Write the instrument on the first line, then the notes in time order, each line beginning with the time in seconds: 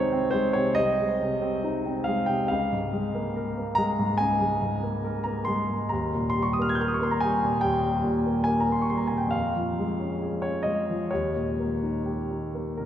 grand piano
Already playing: C2 C3 G#3 C4 D#4 C5 C#5 D#5
0.12 C4
0.31 G#3 C5
0.53 C3 C#5
0.75 C2 D#5
1.00 G#3
1.22 C3
1.42 C4
1.64 D#4
1.86 C4
2.04 G#3 F5
2.26 C3 G5
2.48 C#2 F5
2.73 G#2
2.93 G#3
3.15 A#3
3.36 A#4
3.58 A#3
3.75 G#3 A#5
3.99 G#2
4.18 C#2 G#5
4.41 G#3
4.62 G#2
4.83 A#3
5.04 A#4
5.24 A#3 A#5
5.45 G#3 C6
5.69 G#2
5.89 D#2 A#5
6.15 A#2
6.30 C6
6.37 G3
6.43 C#6
6.53 D#6
6.59 A#3 F6
6.69 G#6
6.75 G6
6.81 A#4 F6
6.88 D#6
6.94 C#6
7.01 A#3 C6
7.11 A#5
7.20 G3 G#5
7.43 A#2
7.61 D#2 G5
7.83 G3
8.04 A#2
8.26 A#3
8.44 A#4 G#5
8.60 A#5
8.68 A#3 C6
8.82 C#6
8.90 G3 C6
8.97 A#5
9.07 A#2 G#5
9.17 G5
9.27 F2 F5
9.56 F3
9.79 G#3
10.00 C#4
10.22 G#4
10.42 C#4 C#5
10.63 G#3 D#5
10.90 F3
11.11 D#2 C#5
11.36 A#2
11.59 A#3
11.83 D#4
12.06 G4
12.31 D#4
12.55 A#3
12.77 A#2 A#4